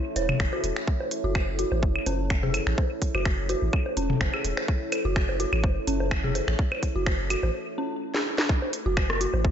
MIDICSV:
0, 0, Header, 1, 5, 480
1, 0, Start_track
1, 0, Key_signature, 3, "minor"
1, 0, Tempo, 476190
1, 882, Time_signature, 4, 2, 24, 8
1, 9590, End_track
2, 0, Start_track
2, 0, Title_t, "Ambient pad"
2, 0, Program_c, 0, 92
2, 0, Note_on_c, 0, 64, 73
2, 0, Note_on_c, 0, 69, 69
2, 0, Note_on_c, 0, 73, 66
2, 7602, Note_off_c, 0, 64, 0
2, 7602, Note_off_c, 0, 69, 0
2, 7602, Note_off_c, 0, 73, 0
2, 8561, Note_on_c, 0, 64, 88
2, 8718, Note_on_c, 0, 57, 93
2, 9218, Note_on_c, 0, 73, 72
2, 9590, Note_off_c, 0, 57, 0
2, 9590, Note_off_c, 0, 64, 0
2, 9590, Note_off_c, 0, 73, 0
2, 9590, End_track
3, 0, Start_track
3, 0, Title_t, "Synth bell"
3, 0, Program_c, 1, 98
3, 164, Note_on_c, 1, 73, 76
3, 224, Note_off_c, 1, 73, 0
3, 532, Note_on_c, 1, 66, 71
3, 584, Note_off_c, 1, 66, 0
3, 1251, Note_on_c, 1, 66, 72
3, 1330, Note_off_c, 1, 66, 0
3, 1602, Note_on_c, 1, 66, 71
3, 1664, Note_off_c, 1, 66, 0
3, 2082, Note_on_c, 1, 61, 76
3, 2174, Note_off_c, 1, 61, 0
3, 2451, Note_on_c, 1, 68, 76
3, 2504, Note_off_c, 1, 68, 0
3, 3171, Note_on_c, 1, 66, 71
3, 3250, Note_off_c, 1, 66, 0
3, 3522, Note_on_c, 1, 66, 75
3, 3584, Note_off_c, 1, 66, 0
3, 4001, Note_on_c, 1, 61, 74
3, 4094, Note_off_c, 1, 61, 0
3, 4372, Note_on_c, 1, 68, 73
3, 4424, Note_off_c, 1, 68, 0
3, 5092, Note_on_c, 1, 66, 70
3, 5171, Note_off_c, 1, 66, 0
3, 5441, Note_on_c, 1, 66, 73
3, 5503, Note_off_c, 1, 66, 0
3, 5920, Note_on_c, 1, 61, 76
3, 6014, Note_off_c, 1, 61, 0
3, 6291, Note_on_c, 1, 68, 77
3, 6344, Note_off_c, 1, 68, 0
3, 7012, Note_on_c, 1, 66, 75
3, 7091, Note_off_c, 1, 66, 0
3, 7362, Note_on_c, 1, 66, 73
3, 7424, Note_off_c, 1, 66, 0
3, 7842, Note_on_c, 1, 61, 76
3, 7934, Note_off_c, 1, 61, 0
3, 8210, Note_on_c, 1, 68, 72
3, 8263, Note_off_c, 1, 68, 0
3, 8930, Note_on_c, 1, 66, 74
3, 9010, Note_off_c, 1, 66, 0
3, 9282, Note_on_c, 1, 66, 77
3, 9344, Note_off_c, 1, 66, 0
3, 9590, End_track
4, 0, Start_track
4, 0, Title_t, "Sub bass"
4, 0, Program_c, 2, 38
4, 162, Note_on_c, 2, 28, 98
4, 324, Note_off_c, 2, 28, 0
4, 402, Note_on_c, 2, 30, 98
4, 486, Note_off_c, 2, 30, 0
4, 642, Note_on_c, 2, 28, 92
4, 726, Note_off_c, 2, 28, 0
4, 1250, Note_on_c, 2, 30, 102
4, 1658, Note_off_c, 2, 30, 0
4, 1731, Note_on_c, 2, 33, 79
4, 1842, Note_on_c, 2, 30, 84
4, 1857, Note_off_c, 2, 33, 0
4, 2004, Note_off_c, 2, 30, 0
4, 2082, Note_on_c, 2, 30, 100
4, 2619, Note_off_c, 2, 30, 0
4, 2691, Note_on_c, 2, 33, 102
4, 2763, Note_off_c, 2, 33, 0
4, 3171, Note_on_c, 2, 30, 99
4, 3578, Note_off_c, 2, 30, 0
4, 3651, Note_on_c, 2, 33, 83
4, 3723, Note_off_c, 2, 33, 0
4, 4001, Note_on_c, 2, 28, 100
4, 4164, Note_off_c, 2, 28, 0
4, 4241, Note_on_c, 2, 30, 96
4, 4325, Note_off_c, 2, 30, 0
4, 4482, Note_on_c, 2, 28, 86
4, 4566, Note_off_c, 2, 28, 0
4, 5091, Note_on_c, 2, 30, 99
4, 5499, Note_off_c, 2, 30, 0
4, 5571, Note_on_c, 2, 33, 86
4, 5681, Note_on_c, 2, 30, 85
4, 5696, Note_off_c, 2, 33, 0
4, 5844, Note_off_c, 2, 30, 0
4, 5922, Note_on_c, 2, 30, 103
4, 6458, Note_off_c, 2, 30, 0
4, 6531, Note_on_c, 2, 33, 102
4, 6603, Note_off_c, 2, 33, 0
4, 7010, Note_on_c, 2, 30, 103
4, 7418, Note_off_c, 2, 30, 0
4, 7491, Note_on_c, 2, 33, 90
4, 7563, Note_off_c, 2, 33, 0
4, 8930, Note_on_c, 2, 30, 102
4, 9338, Note_off_c, 2, 30, 0
4, 9410, Note_on_c, 2, 33, 90
4, 9521, Note_on_c, 2, 30, 83
4, 9536, Note_off_c, 2, 33, 0
4, 9590, Note_off_c, 2, 30, 0
4, 9590, End_track
5, 0, Start_track
5, 0, Title_t, "Drums"
5, 162, Note_on_c, 9, 42, 96
5, 163, Note_on_c, 9, 77, 45
5, 263, Note_off_c, 9, 42, 0
5, 264, Note_off_c, 9, 77, 0
5, 293, Note_on_c, 9, 47, 90
5, 293, Note_on_c, 9, 75, 63
5, 393, Note_off_c, 9, 47, 0
5, 393, Note_off_c, 9, 75, 0
5, 402, Note_on_c, 9, 26, 89
5, 402, Note_on_c, 9, 36, 120
5, 503, Note_off_c, 9, 26, 0
5, 503, Note_off_c, 9, 36, 0
5, 533, Note_on_c, 9, 77, 45
5, 633, Note_off_c, 9, 77, 0
5, 642, Note_on_c, 9, 42, 87
5, 743, Note_off_c, 9, 42, 0
5, 771, Note_on_c, 9, 26, 61
5, 872, Note_off_c, 9, 26, 0
5, 882, Note_on_c, 9, 36, 106
5, 983, Note_off_c, 9, 36, 0
5, 1013, Note_on_c, 9, 77, 45
5, 1114, Note_off_c, 9, 77, 0
5, 1122, Note_on_c, 9, 42, 91
5, 1223, Note_off_c, 9, 42, 0
5, 1362, Note_on_c, 9, 26, 84
5, 1362, Note_on_c, 9, 36, 117
5, 1362, Note_on_c, 9, 75, 65
5, 1362, Note_on_c, 9, 77, 43
5, 1462, Note_off_c, 9, 36, 0
5, 1463, Note_off_c, 9, 26, 0
5, 1463, Note_off_c, 9, 75, 0
5, 1463, Note_off_c, 9, 77, 0
5, 1601, Note_on_c, 9, 42, 93
5, 1702, Note_off_c, 9, 42, 0
5, 1732, Note_on_c, 9, 77, 45
5, 1832, Note_off_c, 9, 77, 0
5, 1842, Note_on_c, 9, 36, 111
5, 1942, Note_off_c, 9, 36, 0
5, 1971, Note_on_c, 9, 75, 63
5, 2072, Note_off_c, 9, 75, 0
5, 2081, Note_on_c, 9, 42, 95
5, 2082, Note_on_c, 9, 77, 42
5, 2182, Note_off_c, 9, 42, 0
5, 2183, Note_off_c, 9, 77, 0
5, 2321, Note_on_c, 9, 26, 86
5, 2321, Note_on_c, 9, 36, 117
5, 2422, Note_off_c, 9, 26, 0
5, 2422, Note_off_c, 9, 36, 0
5, 2451, Note_on_c, 9, 47, 77
5, 2451, Note_on_c, 9, 77, 44
5, 2552, Note_off_c, 9, 47, 0
5, 2552, Note_off_c, 9, 77, 0
5, 2561, Note_on_c, 9, 42, 90
5, 2562, Note_on_c, 9, 75, 66
5, 2661, Note_off_c, 9, 42, 0
5, 2663, Note_off_c, 9, 75, 0
5, 2690, Note_on_c, 9, 26, 57
5, 2791, Note_off_c, 9, 26, 0
5, 2801, Note_on_c, 9, 36, 109
5, 2802, Note_on_c, 9, 77, 44
5, 2902, Note_off_c, 9, 36, 0
5, 2903, Note_off_c, 9, 77, 0
5, 3041, Note_on_c, 9, 36, 60
5, 3041, Note_on_c, 9, 42, 90
5, 3142, Note_off_c, 9, 36, 0
5, 3142, Note_off_c, 9, 42, 0
5, 3172, Note_on_c, 9, 75, 67
5, 3172, Note_on_c, 9, 77, 41
5, 3272, Note_off_c, 9, 75, 0
5, 3272, Note_off_c, 9, 77, 0
5, 3281, Note_on_c, 9, 26, 86
5, 3281, Note_on_c, 9, 36, 122
5, 3382, Note_off_c, 9, 26, 0
5, 3382, Note_off_c, 9, 36, 0
5, 3520, Note_on_c, 9, 42, 84
5, 3522, Note_on_c, 9, 77, 43
5, 3621, Note_off_c, 9, 42, 0
5, 3623, Note_off_c, 9, 77, 0
5, 3761, Note_on_c, 9, 36, 107
5, 3761, Note_on_c, 9, 75, 65
5, 3862, Note_off_c, 9, 36, 0
5, 3862, Note_off_c, 9, 75, 0
5, 3891, Note_on_c, 9, 77, 42
5, 3992, Note_off_c, 9, 77, 0
5, 4001, Note_on_c, 9, 42, 88
5, 4101, Note_off_c, 9, 42, 0
5, 4131, Note_on_c, 9, 47, 90
5, 4232, Note_off_c, 9, 47, 0
5, 4241, Note_on_c, 9, 26, 85
5, 4241, Note_on_c, 9, 36, 107
5, 4242, Note_on_c, 9, 77, 42
5, 4342, Note_off_c, 9, 26, 0
5, 4342, Note_off_c, 9, 36, 0
5, 4343, Note_off_c, 9, 77, 0
5, 4371, Note_on_c, 9, 75, 67
5, 4472, Note_off_c, 9, 75, 0
5, 4481, Note_on_c, 9, 42, 88
5, 4582, Note_off_c, 9, 42, 0
5, 4610, Note_on_c, 9, 26, 57
5, 4612, Note_on_c, 9, 77, 41
5, 4711, Note_off_c, 9, 26, 0
5, 4713, Note_off_c, 9, 77, 0
5, 4721, Note_on_c, 9, 36, 104
5, 4822, Note_off_c, 9, 36, 0
5, 4961, Note_on_c, 9, 42, 88
5, 4963, Note_on_c, 9, 75, 68
5, 4963, Note_on_c, 9, 77, 43
5, 5062, Note_off_c, 9, 42, 0
5, 5063, Note_off_c, 9, 75, 0
5, 5063, Note_off_c, 9, 77, 0
5, 5201, Note_on_c, 9, 36, 113
5, 5202, Note_on_c, 9, 26, 83
5, 5302, Note_off_c, 9, 26, 0
5, 5302, Note_off_c, 9, 36, 0
5, 5332, Note_on_c, 9, 77, 44
5, 5433, Note_off_c, 9, 77, 0
5, 5442, Note_on_c, 9, 42, 91
5, 5542, Note_off_c, 9, 42, 0
5, 5572, Note_on_c, 9, 75, 66
5, 5672, Note_off_c, 9, 75, 0
5, 5681, Note_on_c, 9, 36, 103
5, 5682, Note_on_c, 9, 77, 43
5, 5782, Note_off_c, 9, 36, 0
5, 5783, Note_off_c, 9, 77, 0
5, 5922, Note_on_c, 9, 42, 90
5, 6022, Note_off_c, 9, 42, 0
5, 6051, Note_on_c, 9, 77, 44
5, 6152, Note_off_c, 9, 77, 0
5, 6161, Note_on_c, 9, 36, 112
5, 6162, Note_on_c, 9, 26, 91
5, 6162, Note_on_c, 9, 75, 66
5, 6262, Note_off_c, 9, 36, 0
5, 6263, Note_off_c, 9, 26, 0
5, 6263, Note_off_c, 9, 75, 0
5, 6291, Note_on_c, 9, 47, 79
5, 6392, Note_off_c, 9, 47, 0
5, 6402, Note_on_c, 9, 42, 80
5, 6402, Note_on_c, 9, 77, 43
5, 6503, Note_off_c, 9, 42, 0
5, 6503, Note_off_c, 9, 77, 0
5, 6532, Note_on_c, 9, 26, 57
5, 6633, Note_off_c, 9, 26, 0
5, 6641, Note_on_c, 9, 36, 116
5, 6742, Note_off_c, 9, 36, 0
5, 6772, Note_on_c, 9, 75, 68
5, 6772, Note_on_c, 9, 77, 45
5, 6872, Note_off_c, 9, 75, 0
5, 6872, Note_off_c, 9, 77, 0
5, 6881, Note_on_c, 9, 36, 56
5, 6882, Note_on_c, 9, 42, 91
5, 6982, Note_off_c, 9, 36, 0
5, 6983, Note_off_c, 9, 42, 0
5, 7121, Note_on_c, 9, 26, 91
5, 7121, Note_on_c, 9, 36, 117
5, 7123, Note_on_c, 9, 77, 43
5, 7222, Note_off_c, 9, 26, 0
5, 7222, Note_off_c, 9, 36, 0
5, 7224, Note_off_c, 9, 77, 0
5, 7362, Note_on_c, 9, 42, 91
5, 7363, Note_on_c, 9, 75, 70
5, 7462, Note_off_c, 9, 42, 0
5, 7463, Note_off_c, 9, 75, 0
5, 7492, Note_on_c, 9, 77, 44
5, 7593, Note_off_c, 9, 77, 0
5, 8211, Note_on_c, 9, 38, 76
5, 8312, Note_off_c, 9, 38, 0
5, 8450, Note_on_c, 9, 38, 100
5, 8551, Note_off_c, 9, 38, 0
5, 8561, Note_on_c, 9, 36, 118
5, 8662, Note_off_c, 9, 36, 0
5, 8691, Note_on_c, 9, 77, 46
5, 8792, Note_off_c, 9, 77, 0
5, 8801, Note_on_c, 9, 42, 90
5, 8902, Note_off_c, 9, 42, 0
5, 9041, Note_on_c, 9, 36, 124
5, 9042, Note_on_c, 9, 26, 94
5, 9042, Note_on_c, 9, 75, 63
5, 9042, Note_on_c, 9, 77, 45
5, 9142, Note_off_c, 9, 36, 0
5, 9143, Note_off_c, 9, 26, 0
5, 9143, Note_off_c, 9, 75, 0
5, 9143, Note_off_c, 9, 77, 0
5, 9171, Note_on_c, 9, 37, 69
5, 9272, Note_off_c, 9, 37, 0
5, 9282, Note_on_c, 9, 42, 93
5, 9383, Note_off_c, 9, 42, 0
5, 9411, Note_on_c, 9, 77, 45
5, 9512, Note_off_c, 9, 77, 0
5, 9521, Note_on_c, 9, 36, 117
5, 9590, Note_off_c, 9, 36, 0
5, 9590, End_track
0, 0, End_of_file